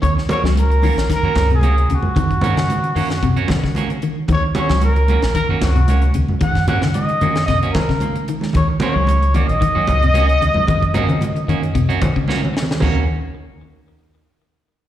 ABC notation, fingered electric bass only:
X:1
M:4/4
L:1/16
Q:"Swing 16ths" 1/4=113
K:Ebdor
V:1 name="Fingered electric bass" clef=bass
E,, z2 D,,4 B,,, z G,, D,,4 E,, G,,- | G,,2 A,, E,3 G,,3 z E,2 z4 | E,, z2 D,,4 B,,, z G,, D,,4 E,, G,,- | G,,2 A,, E,3 G,,3 z E,2 z4 |
E,, z2 D,,4 B,,, z G,, D,,4 E,, G,,- | G,,2 A,, E,3 G,,3 z E,2 z4 | E,,2 z12 z2 |]